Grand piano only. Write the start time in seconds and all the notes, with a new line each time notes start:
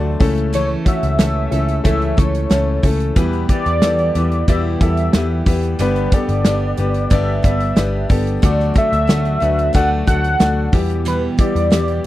Already playing: A3 D4 F#4 A4 C5
0.20 C#3 A3 C#4 E4 A4
0.85 A3 C#4 E4 F#4
1.18 A3 C#4 E4 A4
1.51 A3 C#4 E4 A4
1.84 A3 C#4 E4 A4
2.17 A3 C#4 E4 A4
2.50 A3 C#4 E4 A4
2.84 A3 C#4 E4 A4
3.16 E3 B3 E4 G4 B4
3.49 B3 E4 G4 B4
3.82 B3 E4 G4 A4
4.16 B3 E4 G4 B4
4.48 B3 E4 G4 D5
4.81 B3 E4 G4 A4
5.14 B3 E4 G4 B4
5.46 B3 E4 G4 B4
5.80 G2 B3 D4 G4 B4
6.13 B3 D4 G4 A4
6.46 B3 D4 G4 B4
6.79 B3 D4 G4 B4
7.11 B3 D4 G4 D5
7.44 B3 D4 G4 B4
7.77 B3 D4 G4 B4
8.09 B3 D4 G4 A4
8.43 D3 A3 D4 F#4 A4
8.75 A3 D4 F#4 A4
9.09 A3 D4 F#4 A4
9.42 A3 D4 F#4 B4
9.75 A3 D4 F#4 A4
10.07 A3 D4 F#4 A4
10.40 A3 D4 F#4 A4
10.73 E3 G3 B3 E4 G4
11.39 G3 B3 E4 G4
11.71 G3 B3 E4 G4